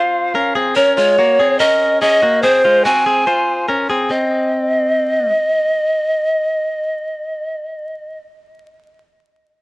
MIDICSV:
0, 0, Header, 1, 3, 480
1, 0, Start_track
1, 0, Tempo, 416378
1, 882, Time_signature, 4, 2, 24, 8
1, 11089, End_track
2, 0, Start_track
2, 0, Title_t, "Pan flute"
2, 0, Program_c, 0, 75
2, 0, Note_on_c, 0, 77, 110
2, 640, Note_off_c, 0, 77, 0
2, 871, Note_on_c, 0, 73, 104
2, 1100, Note_off_c, 0, 73, 0
2, 1118, Note_on_c, 0, 73, 108
2, 1834, Note_on_c, 0, 75, 111
2, 1851, Note_off_c, 0, 73, 0
2, 2313, Note_off_c, 0, 75, 0
2, 2320, Note_on_c, 0, 75, 112
2, 2794, Note_on_c, 0, 72, 103
2, 2811, Note_off_c, 0, 75, 0
2, 3281, Note_on_c, 0, 80, 110
2, 3299, Note_off_c, 0, 72, 0
2, 4244, Note_off_c, 0, 80, 0
2, 4726, Note_on_c, 0, 75, 94
2, 9441, Note_off_c, 0, 75, 0
2, 11089, End_track
3, 0, Start_track
3, 0, Title_t, "Clean electric guitar"
3, 0, Program_c, 1, 27
3, 0, Note_on_c, 1, 65, 70
3, 0, Note_on_c, 1, 72, 86
3, 373, Note_off_c, 1, 72, 0
3, 378, Note_off_c, 1, 65, 0
3, 399, Note_on_c, 1, 70, 76
3, 405, Note_on_c, 1, 61, 55
3, 631, Note_off_c, 1, 70, 0
3, 636, Note_on_c, 1, 68, 87
3, 644, Note_off_c, 1, 61, 0
3, 648, Note_on_c, 1, 60, 65
3, 874, Note_off_c, 1, 68, 0
3, 879, Note_on_c, 1, 70, 87
3, 882, Note_off_c, 1, 60, 0
3, 886, Note_on_c, 1, 61, 67
3, 1119, Note_on_c, 1, 65, 75
3, 1121, Note_off_c, 1, 70, 0
3, 1125, Note_off_c, 1, 61, 0
3, 1129, Note_on_c, 1, 56, 62
3, 1361, Note_off_c, 1, 65, 0
3, 1366, Note_off_c, 1, 56, 0
3, 1367, Note_on_c, 1, 66, 88
3, 1373, Note_on_c, 1, 58, 70
3, 1606, Note_off_c, 1, 66, 0
3, 1609, Note_off_c, 1, 58, 0
3, 1609, Note_on_c, 1, 68, 79
3, 1621, Note_on_c, 1, 60, 65
3, 1842, Note_off_c, 1, 68, 0
3, 1846, Note_on_c, 1, 70, 94
3, 1853, Note_off_c, 1, 60, 0
3, 1859, Note_on_c, 1, 61, 67
3, 2297, Note_off_c, 1, 70, 0
3, 2304, Note_off_c, 1, 61, 0
3, 2325, Note_on_c, 1, 68, 75
3, 2336, Note_on_c, 1, 61, 65
3, 2559, Note_off_c, 1, 68, 0
3, 2563, Note_on_c, 1, 66, 85
3, 2571, Note_off_c, 1, 61, 0
3, 2574, Note_on_c, 1, 58, 65
3, 2800, Note_off_c, 1, 66, 0
3, 2805, Note_on_c, 1, 68, 88
3, 2810, Note_off_c, 1, 58, 0
3, 2813, Note_on_c, 1, 60, 74
3, 3045, Note_off_c, 1, 68, 0
3, 3049, Note_off_c, 1, 60, 0
3, 3049, Note_on_c, 1, 65, 73
3, 3057, Note_on_c, 1, 56, 64
3, 3282, Note_off_c, 1, 65, 0
3, 3287, Note_on_c, 1, 66, 80
3, 3291, Note_off_c, 1, 56, 0
3, 3298, Note_on_c, 1, 60, 71
3, 3521, Note_off_c, 1, 60, 0
3, 3524, Note_off_c, 1, 66, 0
3, 3528, Note_on_c, 1, 68, 77
3, 3535, Note_on_c, 1, 60, 67
3, 3766, Note_off_c, 1, 68, 0
3, 3770, Note_on_c, 1, 72, 89
3, 3771, Note_off_c, 1, 60, 0
3, 3776, Note_on_c, 1, 65, 67
3, 4220, Note_off_c, 1, 72, 0
3, 4223, Note_off_c, 1, 65, 0
3, 4248, Note_on_c, 1, 70, 77
3, 4258, Note_on_c, 1, 61, 58
3, 4486, Note_off_c, 1, 70, 0
3, 4490, Note_on_c, 1, 68, 82
3, 4492, Note_off_c, 1, 61, 0
3, 4502, Note_on_c, 1, 60, 69
3, 4719, Note_off_c, 1, 60, 0
3, 4729, Note_off_c, 1, 68, 0
3, 4733, Note_on_c, 1, 60, 72
3, 6124, Note_off_c, 1, 60, 0
3, 11089, End_track
0, 0, End_of_file